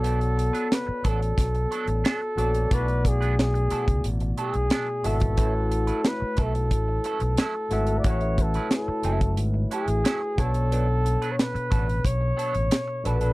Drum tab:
HH |xxxxx-xxxxxxx-xx|xxxxxxxxxxxxx-xx|x-xxx-xxx-xxx-xx|xxxxx-xxx-xxx-xx|
SD |----o---o---o---|----o-------o---|----o-------o---|----o-------o---|
BD |------o-o-------|o-o----o-------o|o-----o-o-------|o-o----o------o-|

HH |x-xxxxxxx-xxx-xx|
SD |----o-------o---|
BD |------o-o-------|